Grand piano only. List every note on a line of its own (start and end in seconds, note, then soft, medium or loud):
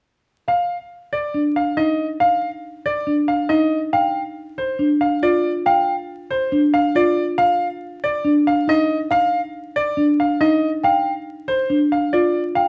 0.48 0.76 F5 soft
1.13 1.41 D5 medium
1.56 1.84 F5 soft
1.77 2.05 D#5 medium
2.20 2.48 F5 medium
2.86 3.13 D5 medium
3.28 3.56 F5 soft
3.49 3.78 D#5 medium
3.93 4.21 F5 medium
4.58 4.86 C5 medium
5.01 5.29 F5 soft
5.23 5.51 D5 medium
5.66 5.94 F5 medium
6.31 6.59 C5 medium
6.74 7.02 F5 medium
6.96 7.24 D5 medium
7.38 7.66 F5 medium
8.04 8.31 D5 medium
8.47 8.75 F5 medium
8.69 8.96 D#5 medium
9.11 9.39 F5 medium
9.76 10.04 D5 medium
10.20 10.47 F5 medium
10.41 10.69 D#5 medium
10.84 11.12 F5 medium
11.48 11.76 C5 medium
11.92 12.20 F5 soft
12.13 12.41 D5 medium
12.55 12.68 F5 medium